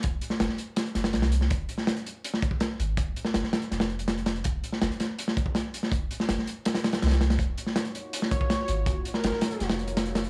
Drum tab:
HH |x---x---x---x---x-x-x-x-x-x-x---|x---x---x-x-x---x---x---x---x---|x---x---x---x-x-x-x-x-x-x-x-x-x-|x---x---x-x-x---x---x---x---x---|
SD |------o-o-o-----o---o-o-o-o---o-|------o-o---------o-----o-------|------o-o-o-o---o-o-----o---o---|------o-o---o-----o-----o-----o-|
BD |o-------------------------------|o-------------------o-o---------|o-------------------------------|o-------------------o-o---------|

HH |x---x---x---x---x-x-x-x-xxx-x-x-|x---x---x-x-x---x---x---x---x---|x---x---x---x-x-x-x-x-x-x-x-x-x-|
SD |------o-o-o-----o-o-o-o-ooo-o-o-|------o-o---------o-----o-------|------o-o-o-o---o-o-----o---o---|
BD |o-------------------------------|o-------------------o-o---------|o-------------------------------|